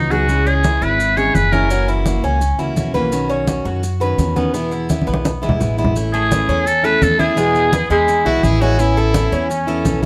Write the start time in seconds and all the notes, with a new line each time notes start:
Already playing: C#2 F#3 B3 D#4
0.10 F#3 B3 D#4 F#4 G#4, maracas
0.28 C#3 E3 G#3 C#4 E4, high conga, maracas
0.46 C#4 G#4, high conga, maracas
0.63 E3 G#3 C#4 E4, high conga, maracas
0.82 G#1 E4 B4, high conga, maracas
0.99 muted steel-string acoustic guitar stroke, high conga, maracas
1.16 E3 G#3 C#4 E4 G#4 C#5, high conga, maracas
1.34 F#1 E3 G#3 C#4 E4 B4, high conga, maracas
1.52 E3 G#3 C#4 E4 A#4, high conga, maracas
1.70 C#3 E3 A#3 C#4 F#4, high conga, maracas
1.88 E4, high conga, maracas
2.06 E3 A#3 C#4 F#4, high conga, maracas
2.23 C#2 C#4, high conga, maracas
2.41 muted steel-string acoustic guitar stroke, high conga, maracas
2.59 C#2 E3 A#3 C#4 E4 F#4, high conga, maracas
2.76 B1 E3 A#3 C#4 F#4, high conga, maracas
2.94 E3 A#3 C#4 F#4 B4, high conga, maracas
3.11 B2 D#3 C#4 F#4, high conga, maracas
3.29 C#4, high conga, maracas
3.47 B2 D#3 C#4 F#4, high conga, maracas
3.65 F#2 F#4, high conga, maracas
3.83 muted steel-string acoustic guitar stroke, high conga, maracas
4.00 D#3 C#4 F#4 B4, high conga, maracas
4.18 E2 B2 D#3 C#4 F#4, high conga, maracas
4.36 D#3 B3 C#4 F#4, high conga, maracas
4.54 B2 E3 G#3 B3 E4, high conga, maracas
4.71 E4, high conga, maracas
4.89 E3 G#3 B3 E4, high conga, maracas
5.02 high conga
5.07 B1 B3, maracas
5.14 high conga
5.25 muted steel-string acoustic guitar stroke, high conga, maracas
5.42 E3 G#3 B3 E4, maracas
5.49 low conga
5.60 A1 E3 G#3 B3 E4, low conga, maracas
5.77 E3 G#3 B3 E4, maracas
5.84 low conga
5.95 E3 A3 C#4 E4, high conga, maracas
6.13 A3 G#4, high conga, maracas
6.31 E3 A3 C#4 E4, high conga, maracas
6.48 E2 C#4, high conga, maracas
6.66 A4, muted steel-string acoustic guitar stroke, high conga, maracas
6.83 A3 C#4 E4 A4 B4, high conga, maracas
7.02 E2 E3 A3 C#4 A4, high conga, maracas
7.19 A3 C#4 E4 G#4, high conga, maracas
7.36 B2 E3 G#3 B3 E4, high conga, maracas
7.55 high conga, maracas
7.72 E3 B3 E4, high conga, maracas
7.90 E2 G#3 E4, high conga, maracas
8.08 muted steel-string acoustic guitar stroke, high conga, maracas
8.25 B1 E3 G#3 B3 E4 F#4, high conga, maracas
8.43 A1 E3 G#3 B3 E4 G#4, high conga, maracas
8.61 E3 G#3 B3 C#4 E4 F#4, maracas
8.79 E3 B3 C#4 E4, high conga, maracas
8.97 A4, high conga, maracas
9.14 E3 B3 C#4 E4, high conga, maracas
9.32 E2 C#4, high conga, maracas
9.50 C#4, muted steel-string acoustic guitar stroke, high conga, maracas
9.67 B3 C#4 E4 A4, high conga, maracas
9.85 B1 E3 B3 C#4 E4, high conga, maracas